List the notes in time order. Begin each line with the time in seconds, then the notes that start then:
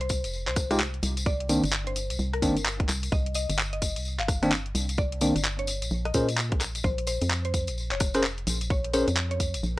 Already playing: C2
0.01 C5, closed hi-hat
0.09 kick, open hi-hat, tambourine
0.24 F1, closed hi-hat, tambourine
0.33 tambourine
0.47 C2 C5, clap, open hi-hat
0.56 kick, cross-stick, open hi-hat, tambourine
0.71 G#3 D#4 F4 G4, cross-stick, closed hi-hat, tambourine
0.80 clap, tambourine
0.94 closed hi-hat
1.03 C2, open hi-hat, tambourine
1.17 closed hi-hat, tambourine
1.26 D5, kick, tambourine
1.40 closed hi-hat
1.49 D#3 A#3 C4 D4 D5, open hi-hat, tambourine
1.64 G1, cross-stick, closed hi-hat, tambourine
1.73 clap, tambourine
1.87 C5, closed hi-hat
1.96 open hi-hat, tambourine
2.10 C2, closed hi-hat, tambourine
2.19 C2, tambourine
2.33 A#4, cross-stick, open hi-hat
2.42 G1 D#3 A#3 C4 D4, kick, open hi-hat, tambourine
2.57 closed hi-hat, tambourine
2.65 clap, tambourine
2.80 kick, closed hi-hat
2.89 C2, cross-stick, clap, open hi-hat, tambourine
3.03 closed hi-hat, tambourine
3.12 C2 D#5, kick, tambourine
3.26 closed hi-hat
3.34 D#5, open hi-hat, tambourine
3.49 G1, closed hi-hat, tambourine
3.59 clap, tambourine
3.73 D#5, closed hi-hat
3.82 kick, open hi-hat, tambourine
3.96 C2, closed hi-hat, tambourine
4.05 tambourine
4.19 G1 F5, clap, open hi-hat
4.28 kick, cross-stick, open hi-hat, tambourine
4.43 D#3 A#3 C4 D4, cross-stick, closed hi-hat, tambourine
4.52 clap, tambourine
4.66 closed hi-hat
4.75 C2, open hi-hat, tambourine
4.89 closed hi-hat, tambourine
4.97 D5, kick, tambourine
5.12 closed hi-hat
5.21 D#3 A#3 C4 D4 D5, open hi-hat, tambourine
5.36 G1, cross-stick, closed hi-hat, tambourine
5.45 clap, tambourine
5.59 C#5, closed hi-hat
5.67 open hi-hat, tambourine
5.82 A#1, closed hi-hat, tambourine
5.91 A#1, tambourine
6.05 D#5, cross-stick, open hi-hat
6.14 A#2 C#4 G#4 A#4 C5, kick, open hi-hat, tambourine
6.29 closed hi-hat, tambourine
6.38 clap, tambourine
6.52 A#1, kick, closed hi-hat
6.60 cross-stick, clap, open hi-hat, tambourine
6.75 closed hi-hat, tambourine
6.84 A#1 C5, kick, tambourine
6.98 closed hi-hat
7.07 C5, open hi-hat, tambourine
7.21 F2, closed hi-hat, tambourine
7.31 clap, tambourine
7.45 C5, closed hi-hat
7.54 kick, open hi-hat, tambourine
7.67 A#1, closed hi-hat, tambourine
7.78 tambourine
7.91 F1 C#5, clap, open hi-hat
8.00 kick, cross-stick, open hi-hat, tambourine
8.14 C#4 G#4 A#4 C5, cross-stick, closed hi-hat, tambourine
8.24 clap, tambourine
8.38 closed hi-hat
8.47 A#1, open hi-hat, tambourine
8.61 closed hi-hat, tambourine
8.70 C#5, kick, tambourine
8.84 closed hi-hat
8.93 C#4 G#4 A#4 C5 C#5, open hi-hat, tambourine
9.08 F2, cross-stick, closed hi-hat, tambourine
9.17 clap
9.31 C#5, closed hi-hat
9.40 kick, open hi-hat, tambourine
9.54 A#1, closed hi-hat, tambourine
9.63 A#1, tambourine